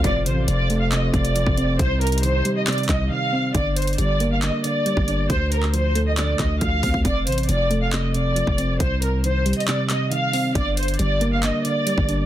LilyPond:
<<
  \new Staff \with { instrumentName = "Violin section" } { \time 4/4 \key g \minor \tempo 4 = 137 d''8 c''8 d''8. f''16 ees''8 d''4. | c''8 bes'8 c''8. ees''16 d''8 ees''8 f''4 | d''8 c''8 d''8. f''16 ees''8 d''4. | c''8 bes'8 c''8. ees''16 d''8 ees''8 f''4 |
d''8 c''8 d''8. f''16 ees''8 d''4. | c''8 bes'8 c''8. ees''16 d''8 ees''8 f''4 | d''8 c''8 d''8. f''16 ees''8 d''4. | }
  \new Staff \with { instrumentName = "French horn section" } { \time 4/4 \key g \minor << { <c c''>1~ | <c c''>1 | r1 | r1 |
r1 | r1 | r1 | } \\ { <a f'>1 | <g ees'>1 | r1 | r1 |
r1 | r1 | r1 | } >> }
  \new Staff \with { instrumentName = "Synth keys" } { \clef bass \time 4/4 \key g \minor c8 c8 f8 a8 c8 c8 f8 c'8 | c8 c8 ees8 g8 c8 c8 ees8 c'8 | d8 d8 g8 bes8 d8 d8 g8 d'8 | d8 d8 f8 a8 d8 d8 f8 c'8 |
c8 c8 f8 a8 c8 c8 f8 c'8 | c8 c8 ees8 g8 c8 c8 ees8 c'8 | d8 d8 g8 bes8 d8 d8 g8 d'8 | }
  \new Staff \with { instrumentName = "String section" } { \clef bass \time 4/4 \key g \minor <a, c f>8. r2. r16 | r1 | r1 | r1 |
r1 | r1 | r1 | }
  \new Staff \with { instrumentName = "808-style bass" } { \clef bass \time 4/4 \key g \minor f,,8 a,,8 f,,4. f,,8. f,,8. | c,4. r4 c,8 r4 | g,,4 g,,4~ g,,16 r4 g,,8. | d,2~ d,8 d,8 d,8 d,16 d,16 |
f,,8 a,,8 f,,2~ f,,16 f,,8. | c,4.~ c,16 r2 r16 | g,,4 g,,4~ g,,16 r4 g,,8. | }
  \new DrumStaff \with { instrumentName = "Drums" } \drummode { \time 4/4 <hh bd>8 hh8 hh8 hh8 <hc hh>8 <hh bd>16 hh16 hh16 bd16 hh8 | <hh bd>8 hh32 hh32 hh32 hh32 hh8 hh8 <hc hh>32 hh32 hh32 hh32 <hc hh bd>8 r4 | <hh bd>8 hh32 hh32 hh32 hh32 hh8 hh8 <hc hh>8 hh8 hh16 bd16 hh8 | <hh bd>8 hh16 hc16 hh8 hh8 <hc hh>8 <hc hh bd>8 <hh bd>8 <hho bd>16 bd16 |
<hh bd>8 hh32 hh32 hh32 hh32 hh8 hh8 <hc hh>8 hh8 hh16 bd16 hh8 | <hh bd>8 hh8 \tuplet 3/2 { hh16 r16 r16 hh16 hh16 hh16 } <hc hh>8 <hc hh>8 hh8 hho8 | <hh bd>8 hh32 hh32 hh32 hh32 hh8 hh8 <hc hh>8 hh8 hh16 bd16 hh8 | }
>>